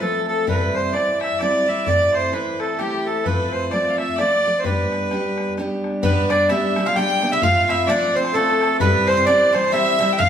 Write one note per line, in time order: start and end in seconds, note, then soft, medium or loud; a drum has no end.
0.00 0.47 F3 medium
0.00 0.47 A3 medium
0.00 0.47 C4 medium
0.00 0.48 F4 medium
0.00 0.27 A4 medium
0.00 0.26 A4 medium
0.28 0.49 A4 medium
0.28 0.46 A4 medium
0.47 0.93 C3 medium
0.47 0.92 E3 medium
0.47 0.92 G3 medium
0.47 0.94 C4 medium
0.47 0.95 E4 medium
0.47 0.73 B4 medium
0.47 0.75 B4 medium
0.47 bodhran medium
0.74 0.95 C5 medium
0.74 bodhran soft
0.93 1.39 E3 medium
0.93 1.40 G3 medium
0.93 1.41 C4 medium
0.93 1.41 E4 medium
0.93 1.22 D5 medium
0.93 1.19 D5 medium
0.93 bodhran medium
1.20 1.41 E5 medium
1.20 bodhran medium
1.31 bodhran soft
1.39 1.65 E3 medium
1.39 1.66 G3 medium
1.39 1.67 C4 medium
1.39 1.67 E4 medium
1.39 1.85 D5 medium
1.39 1.68 D5 medium
1.39 bodhran medium
1.66 1.85 E3 medium
1.66 1.86 G3 medium
1.66 1.86 C4 medium
1.66 1.86 E4 medium
1.66 1.88 E5 medium
1.86 2.33 C3 medium
1.86 2.30 E3 medium
1.86 2.32 A3 medium
1.86 2.33 C4 medium
1.86 2.33 E4 medium
1.86 2.14 D5 medium
1.86 2.15 D5 medium
1.86 bodhran medium
2.13 2.34 C5 medium
2.13 bodhran soft
2.32 2.77 E3 medium
2.32 2.78 A3 medium
2.32 2.79 C4 medium
2.32 2.80 E4 medium
2.32 2.62 B4 medium
2.32 2.61 B4 medium
2.32 bodhran medium
2.60 2.80 A4 medium
2.60 bodhran medium
2.79 3.25 E3 medium
2.79 3.25 A3 medium
2.79 3.25 C4 medium
2.79 3.26 E4 medium
2.79 3.07 G4 medium
2.79 bodhran medium
3.05 3.26 A4 medium
3.24 3.70 F3 medium
3.24 3.72 A3 medium
3.24 3.71 C4 medium
3.24 3.72 F4 medium
3.24 3.73 B4 medium
3.24 3.53 B4 medium
3.24 bodhran medium
3.52 3.73 C5 medium
3.52 bodhran soft
3.71 4.17 F3 medium
3.71 4.18 A3 medium
3.71 4.17 C4 medium
3.71 4.19 F4 medium
3.71 3.92 D5 medium
3.71 3.97 D5 medium
3.71 bodhran medium
3.90 3.98 F5 medium
3.97 4.18 E5 medium
3.97 4.19 E5 medium
3.97 bodhran medium
4.08 bodhran soft
4.17 4.44 F3 medium
4.17 4.46 A3 medium
4.17 4.45 C4 medium
4.17 4.46 F4 medium
4.17 4.65 D5 loud
4.17 4.60 D5 medium
4.17 bodhran medium
4.45 4.64 F3 medium
4.45 4.65 A3 medium
4.45 4.65 C4 medium
4.45 4.66 F4 medium
4.58 4.65 C5 medium
4.63 5.11 G3 medium
4.63 5.12 B3 medium
4.63 5.12 D4 medium
4.63 5.13 G4 medium
4.63 5.57 B4 medium
4.63 5.54 B4 medium
4.63 bodhran medium
4.92 bodhran soft
5.11 5.56 G3 medium
5.11 5.57 B3 medium
5.11 5.58 D4 medium
5.11 5.58 G4 medium
5.11 bodhran medium
5.38 bodhran medium
5.48 bodhran soft
5.57 6.02 G3 medium
5.57 6.03 B3 medium
5.57 6.03 D4 medium
5.57 6.04 G4 medium
5.57 bodhran soft
5.84 bodhran soft
6.03 6.48 G3 medium
6.03 6.28 B3 medium
6.03 6.49 B3 medium
6.03 6.50 D4 medium
6.03 6.50 G4 medium
6.03 6.31 B4 medium
6.03 bodhran medium
6.29 6.49 D4 medium
6.29 6.50 D5 medium
6.29 6.49 D5 medium
6.29 bodhran medium
6.49 6.76 G3 medium
6.49 6.77 B3 medium
6.49 6.77 D4 medium
6.49 6.84 E4 medium
6.49 6.77 G4 medium
6.49 6.87 E5 medium
6.49 bodhran medium
6.76 6.95 G3 medium
6.76 6.95 B3 medium
6.76 6.96 D4 medium
6.76 6.97 G4 medium
6.76 bodhran medium
6.86 6.95 F4 medium
6.86 6.94 F5 medium
6.86 6.96 F5 medium
6.86 bodhran medium
6.95 7.21 G3 medium
6.95 7.22 B3 medium
6.95 7.22 D4 medium
6.95 7.30 G4 medium
6.95 7.23 G4 medium
6.95 7.33 G5 loud
6.95 7.34 G5 loud
6.95 bodhran medium
7.22 7.41 G3 medium
7.22 7.42 B3 medium
7.22 7.42 D4 medium
7.22 7.42 G4 medium
7.22 bodhran medium
7.32 7.43 E4 medium
7.32 7.42 E5 medium
7.32 7.43 E5 medium
7.42 7.86 F3 medium
7.42 7.88 A3 medium
7.42 7.88 C4 medium
7.42 7.88 F4 medium
7.42 7.68 F4 medium
7.42 7.69 F5 medium
7.42 7.70 F5 loud
7.42 bodhran medium
7.68 7.88 E4 medium
7.68 7.89 E5 loud
7.68 bodhran medium
7.87 8.32 F3 medium
7.87 8.34 A3 medium
7.87 8.34 C4 medium
7.87 8.16 D4 loud
7.87 8.34 F4 medium
7.87 8.17 D5 medium
7.87 8.16 D5 medium
7.87 bodhran medium
8.15 8.35 C4 medium
8.15 8.35 C5 medium
8.15 8.36 C5 medium
8.25 bodhran medium
8.33 8.79 F3 medium
8.33 8.80 A3 medium
8.33 8.78 A3 medium
8.33 8.80 C4 medium
8.33 8.81 F4 medium
8.33 8.77 A4 loud
8.33 8.82 A4 medium
8.33 bodhran medium
8.61 bodhran medium
8.80 9.25 E3 medium
8.80 9.25 G3 medium
8.80 9.07 B3 medium
8.80 9.27 C4 medium
8.80 9.27 G4 medium
8.80 9.08 B4 loud
8.80 9.07 B4 medium
8.80 bodhran loud
9.07 9.11 C4 medium
9.07 9.25 C5 loud
9.07 9.27 C5 medium
9.07 bodhran medium
9.12 9.16 C4 medium
9.17 9.27 C4 medium
9.26 9.52 E3 medium
9.26 9.53 G3 medium
9.26 9.53 C4 medium
9.26 9.54 D4 loud
9.26 9.54 G4 medium
9.26 9.54 D5 medium
9.26 bodhran medium
9.53 9.71 E3 medium
9.53 9.71 G3 medium
9.53 9.71 C4 medium
9.53 9.72 C4 medium
9.53 9.72 G4 medium
9.53 9.74 C5 loud
9.53 9.72 C5 medium
9.53 bodhran medium
9.64 bodhran medium
9.72 9.97 E3 medium
9.72 9.98 G3 medium
9.72 9.99 C4 medium
9.72 9.97 E4 medium
9.72 10.00 G4 medium
9.72 10.14 E5 loud
9.72 10.20 E5 loud
9.72 bodhran medium
9.99 10.18 E3 medium
9.99 10.18 G3 medium
9.99 10.17 C4 medium
9.99 10.17 E4 medium
9.99 10.19 G4 medium
9.99 bodhran medium
10.13 10.20 G5 medium
10.18 10.29 F3 medium
10.18 10.29 A3 medium
10.18 10.29 C4 loud
10.18 10.29 F4 medium
10.18 10.29 F5 loud
10.18 bodhran medium